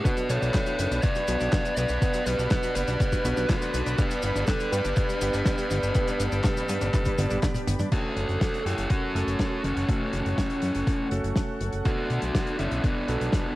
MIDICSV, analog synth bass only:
0, 0, Header, 1, 2, 480
1, 0, Start_track
1, 0, Tempo, 491803
1, 51, Time_signature, 4, 2, 24, 8
1, 13228, End_track
2, 0, Start_track
2, 0, Title_t, "Analog synth bass"
2, 0, Program_c, 0, 38
2, 291, Note_on_c, 0, 35, 93
2, 378, Note_off_c, 0, 35, 0
2, 410, Note_on_c, 0, 35, 82
2, 498, Note_off_c, 0, 35, 0
2, 771, Note_on_c, 0, 30, 97
2, 858, Note_off_c, 0, 30, 0
2, 891, Note_on_c, 0, 35, 82
2, 978, Note_off_c, 0, 35, 0
2, 1251, Note_on_c, 0, 35, 101
2, 1338, Note_off_c, 0, 35, 0
2, 1370, Note_on_c, 0, 35, 81
2, 1458, Note_off_c, 0, 35, 0
2, 1730, Note_on_c, 0, 35, 93
2, 1818, Note_off_c, 0, 35, 0
2, 1851, Note_on_c, 0, 35, 84
2, 1938, Note_off_c, 0, 35, 0
2, 2210, Note_on_c, 0, 35, 93
2, 2298, Note_off_c, 0, 35, 0
2, 2330, Note_on_c, 0, 35, 82
2, 2418, Note_off_c, 0, 35, 0
2, 2692, Note_on_c, 0, 30, 94
2, 2779, Note_off_c, 0, 30, 0
2, 2812, Note_on_c, 0, 35, 84
2, 2899, Note_off_c, 0, 35, 0
2, 3171, Note_on_c, 0, 35, 100
2, 3258, Note_off_c, 0, 35, 0
2, 3291, Note_on_c, 0, 35, 81
2, 3378, Note_off_c, 0, 35, 0
2, 3651, Note_on_c, 0, 35, 100
2, 3738, Note_off_c, 0, 35, 0
2, 3771, Note_on_c, 0, 35, 80
2, 3858, Note_off_c, 0, 35, 0
2, 4131, Note_on_c, 0, 31, 91
2, 4218, Note_off_c, 0, 31, 0
2, 4251, Note_on_c, 0, 31, 83
2, 4338, Note_off_c, 0, 31, 0
2, 4611, Note_on_c, 0, 43, 96
2, 4698, Note_off_c, 0, 43, 0
2, 4732, Note_on_c, 0, 31, 85
2, 4819, Note_off_c, 0, 31, 0
2, 5091, Note_on_c, 0, 31, 99
2, 5178, Note_off_c, 0, 31, 0
2, 5212, Note_on_c, 0, 31, 78
2, 5299, Note_off_c, 0, 31, 0
2, 5572, Note_on_c, 0, 31, 95
2, 5659, Note_off_c, 0, 31, 0
2, 5692, Note_on_c, 0, 31, 81
2, 5779, Note_off_c, 0, 31, 0
2, 6052, Note_on_c, 0, 31, 95
2, 6139, Note_off_c, 0, 31, 0
2, 6172, Note_on_c, 0, 31, 80
2, 6259, Note_off_c, 0, 31, 0
2, 6532, Note_on_c, 0, 43, 94
2, 6619, Note_off_c, 0, 43, 0
2, 6652, Note_on_c, 0, 31, 85
2, 6739, Note_off_c, 0, 31, 0
2, 7013, Note_on_c, 0, 31, 100
2, 7099, Note_off_c, 0, 31, 0
2, 7131, Note_on_c, 0, 31, 81
2, 7218, Note_off_c, 0, 31, 0
2, 7491, Note_on_c, 0, 31, 92
2, 7578, Note_off_c, 0, 31, 0
2, 7612, Note_on_c, 0, 43, 81
2, 7698, Note_off_c, 0, 43, 0
2, 7971, Note_on_c, 0, 30, 91
2, 8058, Note_off_c, 0, 30, 0
2, 8090, Note_on_c, 0, 30, 78
2, 8178, Note_off_c, 0, 30, 0
2, 8450, Note_on_c, 0, 42, 93
2, 8538, Note_off_c, 0, 42, 0
2, 8570, Note_on_c, 0, 30, 81
2, 8658, Note_off_c, 0, 30, 0
2, 8930, Note_on_c, 0, 30, 94
2, 9018, Note_off_c, 0, 30, 0
2, 9050, Note_on_c, 0, 30, 75
2, 9138, Note_off_c, 0, 30, 0
2, 9411, Note_on_c, 0, 30, 92
2, 9498, Note_off_c, 0, 30, 0
2, 9531, Note_on_c, 0, 30, 81
2, 9618, Note_off_c, 0, 30, 0
2, 9891, Note_on_c, 0, 30, 89
2, 9978, Note_off_c, 0, 30, 0
2, 10011, Note_on_c, 0, 30, 79
2, 10098, Note_off_c, 0, 30, 0
2, 10371, Note_on_c, 0, 42, 91
2, 10458, Note_off_c, 0, 42, 0
2, 10490, Note_on_c, 0, 30, 80
2, 10578, Note_off_c, 0, 30, 0
2, 10851, Note_on_c, 0, 30, 98
2, 10938, Note_off_c, 0, 30, 0
2, 10969, Note_on_c, 0, 30, 81
2, 11057, Note_off_c, 0, 30, 0
2, 11330, Note_on_c, 0, 30, 93
2, 11418, Note_off_c, 0, 30, 0
2, 11451, Note_on_c, 0, 30, 80
2, 11538, Note_off_c, 0, 30, 0
2, 11811, Note_on_c, 0, 35, 89
2, 11898, Note_off_c, 0, 35, 0
2, 11931, Note_on_c, 0, 35, 77
2, 12018, Note_off_c, 0, 35, 0
2, 12291, Note_on_c, 0, 30, 92
2, 12378, Note_off_c, 0, 30, 0
2, 12411, Note_on_c, 0, 35, 80
2, 12498, Note_off_c, 0, 35, 0
2, 12770, Note_on_c, 0, 35, 97
2, 12858, Note_off_c, 0, 35, 0
2, 12892, Note_on_c, 0, 35, 81
2, 12979, Note_off_c, 0, 35, 0
2, 13228, End_track
0, 0, End_of_file